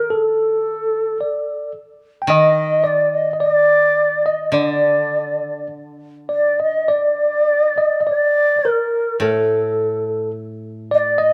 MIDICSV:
0, 0, Header, 1, 4, 480
1, 0, Start_track
1, 0, Tempo, 1107011
1, 48, Time_signature, 2, 2, 24, 8
1, 1967, Tempo, 1183432
1, 3407, Tempo, 1125704
1, 4790, End_track
2, 0, Start_track
2, 0, Title_t, "Shakuhachi"
2, 0, Program_c, 0, 77
2, 0, Note_on_c, 0, 70, 60
2, 62, Note_on_c, 0, 69, 62
2, 68, Note_off_c, 0, 70, 0
2, 768, Note_off_c, 0, 69, 0
2, 998, Note_on_c, 0, 75, 85
2, 1236, Note_on_c, 0, 74, 86
2, 1243, Note_off_c, 0, 75, 0
2, 1356, Note_on_c, 0, 75, 74
2, 1363, Note_off_c, 0, 74, 0
2, 1473, Note_off_c, 0, 75, 0
2, 1476, Note_on_c, 0, 74, 95
2, 1846, Note_on_c, 0, 75, 67
2, 1853, Note_off_c, 0, 74, 0
2, 1966, Note_off_c, 0, 75, 0
2, 1969, Note_on_c, 0, 74, 69
2, 2424, Note_off_c, 0, 74, 0
2, 2686, Note_on_c, 0, 74, 70
2, 2798, Note_off_c, 0, 74, 0
2, 2810, Note_on_c, 0, 75, 55
2, 2927, Note_on_c, 0, 74, 67
2, 2933, Note_off_c, 0, 75, 0
2, 3407, Note_off_c, 0, 74, 0
2, 3409, Note_on_c, 0, 74, 89
2, 3661, Note_on_c, 0, 70, 73
2, 3667, Note_off_c, 0, 74, 0
2, 3866, Note_off_c, 0, 70, 0
2, 3873, Note_on_c, 0, 70, 46
2, 3905, Note_off_c, 0, 70, 0
2, 3905, Note_on_c, 0, 70, 51
2, 3922, Note_on_c, 0, 69, 56
2, 3927, Note_off_c, 0, 70, 0
2, 4378, Note_off_c, 0, 69, 0
2, 4620, Note_on_c, 0, 75, 85
2, 4638, Note_on_c, 0, 74, 93
2, 4642, Note_off_c, 0, 75, 0
2, 4737, Note_on_c, 0, 75, 85
2, 4744, Note_off_c, 0, 74, 0
2, 4790, Note_off_c, 0, 75, 0
2, 4790, End_track
3, 0, Start_track
3, 0, Title_t, "Tine electric piano"
3, 0, Program_c, 1, 4
3, 45, Note_on_c, 1, 69, 62
3, 507, Note_off_c, 1, 69, 0
3, 523, Note_on_c, 1, 74, 49
3, 743, Note_off_c, 1, 74, 0
3, 962, Note_on_c, 1, 79, 52
3, 994, Note_off_c, 1, 79, 0
3, 997, Note_on_c, 1, 75, 81
3, 1219, Note_off_c, 1, 75, 0
3, 1230, Note_on_c, 1, 74, 65
3, 1430, Note_off_c, 1, 74, 0
3, 1445, Note_on_c, 1, 75, 49
3, 1475, Note_on_c, 1, 74, 64
3, 1476, Note_off_c, 1, 75, 0
3, 1826, Note_off_c, 1, 74, 0
3, 1846, Note_on_c, 1, 75, 66
3, 1960, Note_off_c, 1, 75, 0
3, 1967, Note_on_c, 1, 74, 60
3, 2424, Note_off_c, 1, 74, 0
3, 2679, Note_on_c, 1, 74, 51
3, 2794, Note_off_c, 1, 74, 0
3, 2803, Note_on_c, 1, 75, 54
3, 2917, Note_off_c, 1, 75, 0
3, 2918, Note_on_c, 1, 74, 72
3, 3268, Note_off_c, 1, 74, 0
3, 3282, Note_on_c, 1, 75, 60
3, 3368, Note_off_c, 1, 75, 0
3, 3374, Note_on_c, 1, 75, 42
3, 3399, Note_on_c, 1, 74, 60
3, 3405, Note_off_c, 1, 75, 0
3, 3603, Note_off_c, 1, 74, 0
3, 3622, Note_on_c, 1, 74, 42
3, 3648, Note_on_c, 1, 70, 63
3, 3652, Note_off_c, 1, 74, 0
3, 3872, Note_off_c, 1, 70, 0
3, 3890, Note_on_c, 1, 69, 63
3, 4354, Note_off_c, 1, 69, 0
3, 4612, Note_on_c, 1, 74, 73
3, 4722, Note_off_c, 1, 74, 0
3, 4727, Note_on_c, 1, 75, 78
3, 4790, Note_off_c, 1, 75, 0
3, 4790, End_track
4, 0, Start_track
4, 0, Title_t, "Koto"
4, 0, Program_c, 2, 107
4, 0, Note_on_c, 2, 51, 38
4, 521, Note_off_c, 2, 51, 0
4, 986, Note_on_c, 2, 51, 51
4, 1959, Note_on_c, 2, 50, 43
4, 2420, Note_off_c, 2, 51, 0
4, 3330, Note_off_c, 2, 50, 0
4, 3881, Note_on_c, 2, 45, 50
4, 4790, Note_off_c, 2, 45, 0
4, 4790, End_track
0, 0, End_of_file